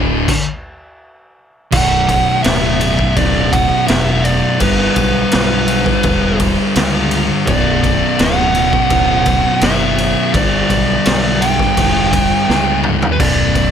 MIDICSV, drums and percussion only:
0, 0, Header, 1, 2, 480
1, 0, Start_track
1, 0, Key_signature, 2, "minor"
1, 0, Tempo, 717703
1, 1153, Time_signature, 4, 2, 24, 8
1, 9169, End_track
2, 0, Start_track
2, 0, Title_t, "Drums"
2, 189, Note_on_c, 9, 36, 107
2, 190, Note_on_c, 9, 49, 110
2, 256, Note_off_c, 9, 36, 0
2, 257, Note_off_c, 9, 49, 0
2, 1152, Note_on_c, 9, 49, 126
2, 1155, Note_on_c, 9, 36, 121
2, 1219, Note_off_c, 9, 49, 0
2, 1221, Note_off_c, 9, 36, 0
2, 1395, Note_on_c, 9, 36, 67
2, 1397, Note_on_c, 9, 51, 72
2, 1462, Note_off_c, 9, 36, 0
2, 1464, Note_off_c, 9, 51, 0
2, 1634, Note_on_c, 9, 51, 116
2, 1643, Note_on_c, 9, 38, 127
2, 1700, Note_off_c, 9, 51, 0
2, 1710, Note_off_c, 9, 38, 0
2, 1878, Note_on_c, 9, 51, 79
2, 1944, Note_off_c, 9, 51, 0
2, 1998, Note_on_c, 9, 36, 86
2, 2065, Note_off_c, 9, 36, 0
2, 2117, Note_on_c, 9, 51, 97
2, 2118, Note_on_c, 9, 36, 104
2, 2183, Note_off_c, 9, 51, 0
2, 2185, Note_off_c, 9, 36, 0
2, 2359, Note_on_c, 9, 36, 90
2, 2361, Note_on_c, 9, 51, 81
2, 2426, Note_off_c, 9, 36, 0
2, 2428, Note_off_c, 9, 51, 0
2, 2597, Note_on_c, 9, 51, 112
2, 2606, Note_on_c, 9, 38, 119
2, 2663, Note_off_c, 9, 51, 0
2, 2673, Note_off_c, 9, 38, 0
2, 2841, Note_on_c, 9, 51, 74
2, 2908, Note_off_c, 9, 51, 0
2, 3077, Note_on_c, 9, 51, 112
2, 3081, Note_on_c, 9, 36, 110
2, 3144, Note_off_c, 9, 51, 0
2, 3148, Note_off_c, 9, 36, 0
2, 3317, Note_on_c, 9, 51, 81
2, 3320, Note_on_c, 9, 36, 80
2, 3384, Note_off_c, 9, 51, 0
2, 3386, Note_off_c, 9, 36, 0
2, 3555, Note_on_c, 9, 51, 121
2, 3564, Note_on_c, 9, 38, 119
2, 3622, Note_off_c, 9, 51, 0
2, 3631, Note_off_c, 9, 38, 0
2, 3796, Note_on_c, 9, 51, 79
2, 3863, Note_off_c, 9, 51, 0
2, 3920, Note_on_c, 9, 36, 91
2, 3926, Note_on_c, 9, 38, 36
2, 3987, Note_off_c, 9, 36, 0
2, 3993, Note_off_c, 9, 38, 0
2, 4034, Note_on_c, 9, 51, 98
2, 4039, Note_on_c, 9, 36, 123
2, 4101, Note_off_c, 9, 51, 0
2, 4106, Note_off_c, 9, 36, 0
2, 4278, Note_on_c, 9, 51, 76
2, 4280, Note_on_c, 9, 36, 87
2, 4344, Note_off_c, 9, 51, 0
2, 4347, Note_off_c, 9, 36, 0
2, 4518, Note_on_c, 9, 51, 114
2, 4527, Note_on_c, 9, 38, 127
2, 4585, Note_off_c, 9, 51, 0
2, 4594, Note_off_c, 9, 38, 0
2, 4756, Note_on_c, 9, 51, 82
2, 4822, Note_off_c, 9, 51, 0
2, 4997, Note_on_c, 9, 51, 109
2, 4999, Note_on_c, 9, 36, 115
2, 5064, Note_off_c, 9, 51, 0
2, 5066, Note_off_c, 9, 36, 0
2, 5240, Note_on_c, 9, 36, 77
2, 5241, Note_on_c, 9, 51, 70
2, 5307, Note_off_c, 9, 36, 0
2, 5308, Note_off_c, 9, 51, 0
2, 5478, Note_on_c, 9, 51, 116
2, 5487, Note_on_c, 9, 38, 127
2, 5545, Note_off_c, 9, 51, 0
2, 5554, Note_off_c, 9, 38, 0
2, 5716, Note_on_c, 9, 51, 72
2, 5783, Note_off_c, 9, 51, 0
2, 5838, Note_on_c, 9, 36, 87
2, 5905, Note_off_c, 9, 36, 0
2, 5953, Note_on_c, 9, 51, 109
2, 5956, Note_on_c, 9, 36, 103
2, 6020, Note_off_c, 9, 51, 0
2, 6023, Note_off_c, 9, 36, 0
2, 6191, Note_on_c, 9, 51, 76
2, 6195, Note_on_c, 9, 36, 86
2, 6258, Note_off_c, 9, 51, 0
2, 6262, Note_off_c, 9, 36, 0
2, 6430, Note_on_c, 9, 51, 112
2, 6439, Note_on_c, 9, 38, 116
2, 6497, Note_off_c, 9, 51, 0
2, 6506, Note_off_c, 9, 38, 0
2, 6677, Note_on_c, 9, 51, 75
2, 6744, Note_off_c, 9, 51, 0
2, 6916, Note_on_c, 9, 36, 114
2, 6916, Note_on_c, 9, 51, 110
2, 6983, Note_off_c, 9, 36, 0
2, 6983, Note_off_c, 9, 51, 0
2, 7155, Note_on_c, 9, 36, 76
2, 7157, Note_on_c, 9, 51, 76
2, 7222, Note_off_c, 9, 36, 0
2, 7223, Note_off_c, 9, 51, 0
2, 7394, Note_on_c, 9, 51, 125
2, 7403, Note_on_c, 9, 38, 127
2, 7461, Note_off_c, 9, 51, 0
2, 7470, Note_off_c, 9, 38, 0
2, 7637, Note_on_c, 9, 51, 85
2, 7704, Note_off_c, 9, 51, 0
2, 7754, Note_on_c, 9, 36, 79
2, 7765, Note_on_c, 9, 38, 33
2, 7821, Note_off_c, 9, 36, 0
2, 7832, Note_off_c, 9, 38, 0
2, 7873, Note_on_c, 9, 36, 97
2, 7873, Note_on_c, 9, 51, 119
2, 7939, Note_off_c, 9, 51, 0
2, 7940, Note_off_c, 9, 36, 0
2, 8112, Note_on_c, 9, 36, 94
2, 8113, Note_on_c, 9, 51, 95
2, 8179, Note_off_c, 9, 36, 0
2, 8180, Note_off_c, 9, 51, 0
2, 8358, Note_on_c, 9, 38, 72
2, 8425, Note_off_c, 9, 38, 0
2, 8584, Note_on_c, 9, 45, 100
2, 8651, Note_off_c, 9, 45, 0
2, 8710, Note_on_c, 9, 43, 102
2, 8777, Note_off_c, 9, 43, 0
2, 8827, Note_on_c, 9, 36, 126
2, 8827, Note_on_c, 9, 55, 93
2, 8827, Note_on_c, 9, 57, 114
2, 8894, Note_off_c, 9, 36, 0
2, 8894, Note_off_c, 9, 55, 0
2, 8894, Note_off_c, 9, 57, 0
2, 9065, Note_on_c, 9, 36, 74
2, 9065, Note_on_c, 9, 51, 73
2, 9131, Note_off_c, 9, 51, 0
2, 9132, Note_off_c, 9, 36, 0
2, 9169, End_track
0, 0, End_of_file